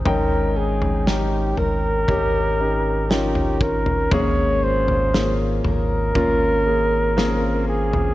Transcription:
<<
  \new Staff \with { instrumentName = "Flugelhorn" } { \time 4/4 \key ees \mixolydian \tempo 4 = 59 bes'8 aes'8 g'8 bes'4. g'8 bes'8 | des''8 c''8. r16 bes'2 aes'8 | }
  \new Staff \with { instrumentName = "Steel-string acoustic guitar" } { \time 4/4 \key ees \mixolydian aes,8 ees'8 <des' ees' bes'>8 bes'8 <des' ees' bes'>4 <des' ees' bes'>8 des'8 | aes,8 f'8 <des' f' bes'>8 bes'8 <des' f' bes'>4 <des' f' bes'>8 des'8 | }
  \new Staff \with { instrumentName = "Grand piano" } { \time 4/4 \key ees \mixolydian <des' ees' g''>4 <des' ees' bes'>4 <des' ees' g'>8 <des' ees' g'>8 <des' ees' f'>4 | <bes c' des' aes'>4 <bes des' aes'>4 <bes des' f'>8 <bes des' aes'>8 <bes c' des' aes'>4 | }
  \new Staff \with { instrumentName = "Grand piano" } { \clef bass \time 4/4 \key ees \mixolydian <aes, aes>4. r2 r8 | aes,4. r2 r8 | }
  \new Staff \with { instrumentName = "Sub bass" } { \clef bass \time 4/4 \key ees \mixolydian aes,,4. aes,,8 aes,,2 | aes,,4. aes,,8 aes,,2 | }
  \new DrumStaff \with { instrumentName = "Drums" } \drummode { \time 4/4 tomfh8. tomfh16 sn8 tomfh8 <bd tomfh>4 sn16 tomfh16 bd16 tomfh16 | <bd tomfh>8. tomfh16 sn8 tomfh8 <bd tomfh>4 sn8. tomfh16 | }
>>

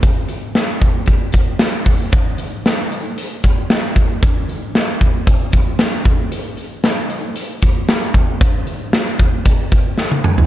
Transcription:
\new DrumStaff \with { instrumentName = "Drums" } \drummode { \time 4/4 \tempo 4 = 115 <hh bd>8 hh8 <hh sn>8 <hh bd>8 <hh bd>8 <hh bd>8 <hh sn>8 <hho bd>8 | <hh bd>8 hh8 <hh sn>8 hh8 hh8 <hh bd>8 <hh sn>8 <hh bd>8 | <hh bd>8 hh8 <hh sn>8 <hh bd>8 <hh bd>8 <hh bd>8 <hh sn>8 <hh bd>8 | hh8 hh8 <hh sn>8 hh8 hh8 <hh bd>8 <hh sn>8 <hh bd>8 |
<hh bd>8 hh8 <hh sn>8 <hh bd>8 <hh bd>8 <hh bd>8 sn16 tommh16 toml16 tomfh16 | }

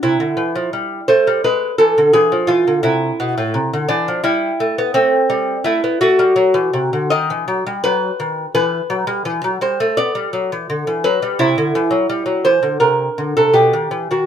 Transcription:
<<
  \new Staff \with { instrumentName = "Lute" } { \time 4/4 \key a \minor \tempo 4 = 84 e'4. c''8 b'8 a'8 gis'8 f'8 | e'4. d'8 e'4 c'4 | \key b \phrygian e'8 fis'4. dis''4 b'4 | b'4. c''8 d''4. b'8 |
e'4. c''8 ais'8. a'16 g'8. fis'16 | }
  \new Staff \with { instrumentName = "Lute" } { \clef bass \time 4/4 \key a \minor c16 d16 e16 f16 g8 a16 g16 gis8 e16 d16 e16 f16 e16 d16 | c8 b,16 a,16 c16 d16 e16 f16 g8 a16 b16 a8 g8 | \key b \phrygian a16 b16 a16 g16 fis16 e16 c16 d16 dis16 e16 fis16 g16 fis8 dis8 | e8 fis16 g16 e16 fis16 g16 a16 b16 g16 fis16 e16 d16 e16 fis16 g16 |
c16 d16 e16 fis16 g16 fis16 e16 d16 bis,8 d16 bis,16 b,16 dis16 e16 dis16 | }
>>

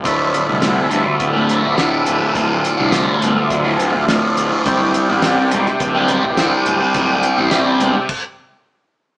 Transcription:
<<
  \new Staff \with { instrumentName = "Tonewheel organ" } { \time 4/4 \key d \minor \tempo 4 = 105 e'1 | f'1 | g'1~ | g'2 r2 | }
  \new Staff \with { instrumentName = "Tonewheel organ" } { \time 4/4 \key d \minor <f a d'>1~ | <f a d'>1 | <g c' d'>1~ | <g c' d'>2 r2 | }
  \new Staff \with { instrumentName = "Distorted electric guitar" } { \clef bass \time 4/4 \key d \minor <d, a, d>8. <a, d>16 <d, a, d>8 <d, a, d>8. <a, d>16 <d, a, d>8 <d, a, d>8. <a, d>16 | <d, a, d>8. <a, d>16 <d, a, d>8 <d, a, d>8. <a, d>16 <d, a, d>8 <d, a, d>8. <a, d>16 | <c g c'>8. <g c'>16 <c g c'>8 <c g c'>8. <g c'>16 <c g c'>8 <c g c'>8. <g c'>16 | <c g c'>8. <g c'>16 <c g c'>8 <c g c'>8 r2 | }
  \new Staff \with { instrumentName = "Fingered electric bass" } { \clef bass \time 4/4 \key d \minor d,,8 r16 c,8 r16 g,,16 r16 d,,8. d,,8 r16 d,,16 r16 | d,,8 r16 c,8 r16 g,,16 r16 d,,8. d,,8 r16 d,,16 r16 | d,,8 r16 a,,8 r16 e,,16 r16 d,,8. d,,8 r16 d,,16 r16 | d,,8 r16 a,,8 r16 e,,16 r2 r16 | }
  \new DrumStaff \with { instrumentName = "Drums" } \drummode { \time 4/4 <hh bd>8 hh8 <hh sn>8 hh8 <hh bd>8 hh8 <hh bd sn>8 hh8 | <hh bd>8 hh8 <hh sn>8 hh8 <hh bd>8 hh8 <hh sn>8 hh8 | <hh bd>8 hh8 <hh sn>8 hh16 sn16 <hh bd>8 hh8 <hh bd sn>8 hh8 | <hh bd>8 hh8 <hh sn>8 hh8 <cymc bd>4 r4 | }
>>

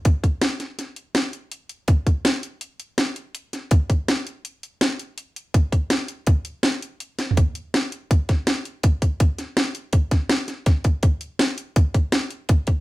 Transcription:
\new DrumStaff \with { instrumentName = "Drums" } \drummode { \time 5/4 \tempo 4 = 164 <hh bd>8 <hh bd>8 <hh sn>8 <hh sn>8 <hh sn>8 hh8 <hh sn>8 hh8 hh8 hh8 | <hh bd>8 <hh bd>8 <hh sn>8 hh8 hh8 hh8 <hh sn>8 hh8 hh8 <hh sn>8 | <hh bd>8 <hh bd>8 <hh sn>8 hh8 hh8 hh8 <hh sn>8 hh8 hh8 hh8 | <hh bd>8 <hh bd>8 <hh sn>8 hh8 <hh bd>8 hh8 <hh sn>8 hh8 \tuplet 3/2 { hh16 r16 r16 <hh sn>16 r16 tomfh16 } |
<hh bd>8 hh8 <hh sn>8 hh8 <hh bd>8 <hh bd sn>8 <hh sn>8 hh8 <hh bd>8 <hh bd>8 | <hh bd>8 <hh sn>8 <hh sn>8 hh8 <hh bd>8 <hh bd sn>8 <hh sn>8 <hh sn>8 <hh bd sn>8 <hh bd>8 | <hh bd>8 hh8 <hh sn>8 hh8 <hh bd>8 <hh bd>8 <hh sn>8 hh8 <hh bd>8 <hh bd>8 | }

